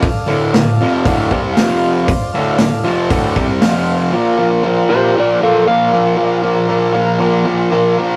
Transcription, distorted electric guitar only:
\new Staff \with { instrumentName = "Distorted electric guitar" } { \clef bass \time 4/4 \key bes \lydian \tempo 4 = 117 r8 <d, a, d>8 <d, a,>8 <f, c f>8 <d, a, d>8 <c g c'>8 <f, c f>4 | r8 <d, a, d>8 <d, a,>8 <f, c f>8 <d, a, d>8 <c g c'>8 <f, c f>4 | <bes, f bes>8 <bes, f bes>8 <bes, f bes>8 <bes, f bes>8 <bes, f bes>8 <bes, f bes>8 <bes, f bes>8 <bes, f bes>8 | <bes, f bes>8 <bes, f bes>8 <bes, f bes>8 <bes, f bes>8 <bes, f bes>8 <bes, f bes>8 <bes, f bes>8 <bes, f bes>8 | }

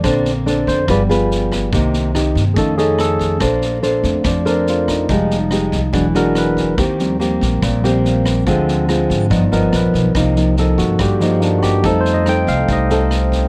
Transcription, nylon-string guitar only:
\new Staff \with { instrumentName = "Nylon-string guitar" } { \time 4/4 \key bes \major \tempo 4 = 142 << { <d' a' c''>8 r8 <d' a' c''>4 <f' aes' b'>8 <f' aes' b'>4. | <bes ees' g'>4 <bes ees' g'>8 r8 <cis' ees' a'>8 <cis' ees' a'>4. | <d' a' c''>4 <d' a' c''>4. <d' a' c''>4. | <aes ees' g'>8 r8 <aes ees' g'>8 r8 <gis d' fis'>8 <gis d' fis'>4. |
<bes c' g'>4 <bes c' g'>4. <bes c' g'>4. | <aes c' f'>4 <aes c' f'>4 <f b dis'>8 <f b dis'>4. | <f bes ees'>4 <f bes ees'>4 r8 <f bes ees'>4. | <c' ees' a'>4 <c' ees' a'>4 r8 <c' ees' a'>4. | } \\ { bes2 g2 | c2 f2 | bes2 f2 | f2 e2 |
ees2 bes,2 | d2 g,2 | c2 g,2 | f2 c2 | } >> }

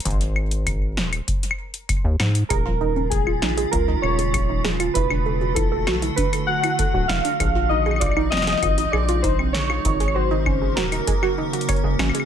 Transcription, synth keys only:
\new Staff \with { instrumentName = "Synth keys" } { \time 4/4 \key aes \major \tempo 4 = 98 r1 | bes'4 aes'4 bes'8 des''4 r8 | b'4 a'4 b'8 fis''4 f''8~ | f''8 ees''8 d''8 ees''4 d''8 c''8 des''8~ |
des''8 c''4 bes'2 r8 | }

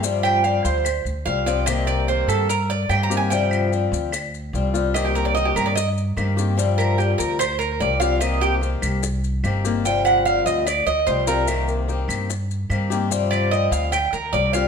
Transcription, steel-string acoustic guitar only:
\new Staff \with { instrumentName = "Steel-string acoustic guitar" } { \time 4/4 \key c \minor \tempo 4 = 147 <c f g c' f'>4 <f g c' f'>4 r4 <f g c' f'>8 <f g c' f'>8 | <c ees bes c' g'>4 <ees bes c' g'>4 r4 <ees bes c' g'>8 <ees bes c' g'>8 | <c f g c' f'>4 <f g c' f'>4 r4 <f g c' f'>8 <f g c' f'>8 | <c ees bes c' g'>4 <ees bes c' g'>4 r4 <ees bes c' g'>8 <ees bes c' g'>8 |
<c f g c' f'>4 <f g c' f'>4 r4 <f g c' f'>8 <f g c' f'>8 | <c ees bes c' g'>4 <ees bes c' g'>4 r4 <ees bes c' g'>8 <ees bes c' g'>8 | <c f g c' f'>4 <f g c' f'>4 r4 <f g c' f'>8 <f g c' f'>8 | <c ees bes c' g'>4 <ees bes c' g'>4 r4 <ees bes c' g'>8 <ees bes c' g'>8 |
<c f g c' f'>4 <f g c' f'>4 r4 <f g c' f'>8 <f g c' f'>8 | }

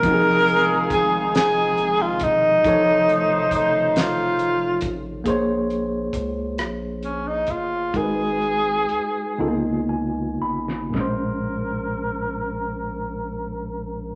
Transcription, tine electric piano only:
\new Staff \with { instrumentName = "Tine electric piano" } { \time 6/8 \key bes \minor \tempo 4. = 45 << { r2. | r2. | r2. | r2 aes''8 ces'''8 |
r2. | } \\ { <f c' ees' ges' aes'>2. | <f ees' a' des''>2. | <bes aes' c'' des''>2. | <aes ees' ges' bes' ces''>4. <des bes ces' ees' f' a'>4. |
<bes, aes des' c''>2. | } >> }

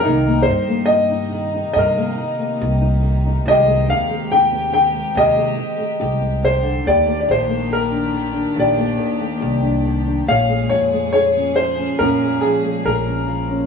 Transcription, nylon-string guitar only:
\new Staff \with { instrumentName = "Nylon-string guitar" } { \time 4/4 \key ees \major \tempo 4 = 70 << { <ees bes ees' g'>16 bes8 bes16 g'16 ees'8 ees'8 bes8 bes16 g'16 ees'8 ees'16 | <ees aes c' g'>16 aes8 aes16 g'16 c'8 c'8 aes8 aes16 g'16 c'8. | r16 bes8 bes16 g'16 d'8 d'8 bes8 bes16 g'16 d'8 d'16 | r16 aes8 aes16 aes'16 des'8 des'8 aes8 aes16 aes'16 des'8 des'16 | } \\ { c8 ees4 ees8 c8 ees4 ees8 | c8 ees4 ees8 c8 ees4 c16 d16 | ees,8 ees4 ees8 ees,8 ees4 ees8 | bes,8 f4 f8 bes,8 f4 f8 | } >> }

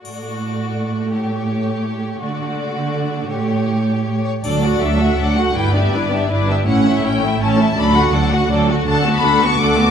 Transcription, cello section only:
\new Staff \with { instrumentName = "Cello section" } { \clef bass \time 3/4 \key d \major \tempo 4 = 164 a,2.~ | a,2. | d2. | a,2~ a,8 r8 |
d,4 d,4 d,4 | g,4 g,4 g,4 | a,4 a,4 a,4 | d,4 d,4 d,4 |
\key b \dorian d,4 d,4 d,4 | }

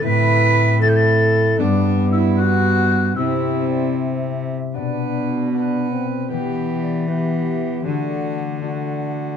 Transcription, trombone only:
\new Staff \with { instrumentName = "Trombone" } { \time 6/8 \key b \phrygian \tempo 4. = 77 e'4. e'4. | b2. | c'2~ c'8 r8 | d'4. d'8. c'8. |
b4. b4. | d'4. d'4. | }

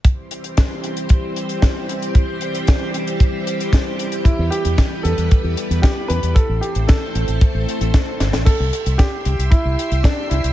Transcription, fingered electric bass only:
\new Staff \with { instrumentName = "Fingered electric bass" } { \clef bass \time 4/4 \key c \major \tempo 4 = 114 r1 | r1 | r16 e,16 r16 e,16 r8 e,16 e,16 r16 e,16 r16 e,16 r8 e,16 e,16 | r16 a,,16 r16 a,,16 r8 a,,16 a,,16 r16 a,,16 r16 a,,16 r8 g,,16 a,,16 |
r16 c,16 r16 c,16 r8 c,16 c,16 r16 c,16 r16 c,16 r8 c,16 c,16 | }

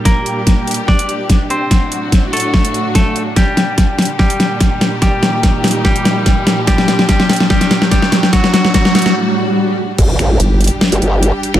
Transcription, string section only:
\new Staff \with { instrumentName = "String section" } { \time 4/4 \key g \minor \tempo 4 = 145 << { <bes, g g'>1 | <a, fis fis'>1 | <bes, g g'>1~ | <bes, g g'>1~ |
<bes, g g'>1 | <a, fis fis'>1 | <g g'>1 | } \\ { d'1~ | d'1~ | d'1 | ees'1 |
d'1~ | d'1 | d'1 | } >> }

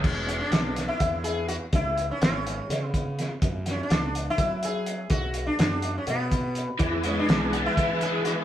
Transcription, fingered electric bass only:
\new Staff \with { instrumentName = "Fingered electric bass" } { \clef bass \time 7/8 \key e \mixolydian \tempo 4 = 124 e,,4 b,,4 e,4. | cis,4 gis,,4 cis4. | fis,4 cis,4 fis4. | b,,4 fis,4 b,4. |
e,4 b,,4 e4. | }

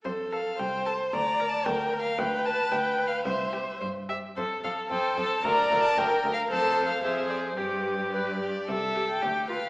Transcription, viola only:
\new Staff \with { instrumentName = "Viola" } { \time 2/4 \key f \major \tempo 4 = 112 a'4 c''4 | d''4 bes'4 | b'2 | c''4 c''8 e''8 |
r4 c''4 | d''4 bes'4 | \key c \major a'4 aes'4 | g'4 b'8 g'8 |
r8 g'8 r8 f'8 | }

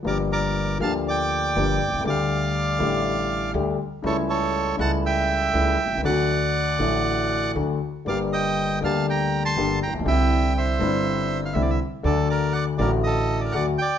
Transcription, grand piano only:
\new Staff \with { instrumentName = "Grand piano" } { \clef bass \time 4/4 \key g \minor \tempo 4 = 120 <g,, g, f bes d' g'>4. <d, d f bes d' g'>4. <g,, g, f bes d' g'>8 r32 b,,32 c,32 cis,32 | <d, d g a g'>4. <a,, a, d g a g'>4. <d, d g a g'>8 r8 | <cis, cis g a e'>4. <cis, cis g a e'>4. <cis, cis g a e'>8 r32 b,,32 c,32 cis,32 | <d, d fis a fis'>4. <a,, a, d fis a fis'>4. <d, d fis a fis'>8 r8 |
<g,, g, d g bes g'>4. <d, d g bes g'>4. <g,, g, d g bes g'>8 r32 a,,32 bes,,32 b,,32 | <c, c d g c' e'>4. <g,, g, d g c' e'>4. <c, c d g c' e'>8 r8 | <d, d fis a fis'>4. <a,, a, d fis a fis'>4. <d, d fis a fis'>8 r8 | }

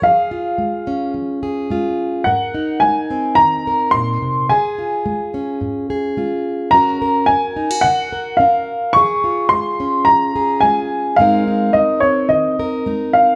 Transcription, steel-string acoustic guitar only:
\new Staff \with { instrumentName = "Steel-string acoustic guitar" } { \time 4/4 \key des \major \tempo 4 = 108 << { aes'8 f'4 des'4 aes'8 f'4 | bes'8 ees'4 c'4 bes'4. | aes'8 f'4 des'4 aes'8 f'4 | <des' ges' bes'>8 bes'4 ees'16 ges'8. bes'8 bes'4 |
aes'8 f'4 des'4 aes'8 f'4 | <aes c' ees' bes'>8 ees'4 c'4 bes'8 ees'4 | } \\ { f4 aes4 f4 aes4 | aes,4 aes4 ees4 bes,8 c8 | des4 aes4 aes,4 aes4 | ges4 r4 des4 des'4 |
f4 aes4 f4 aes4 | aes,4 aes4 ees4 aes4 | } >> }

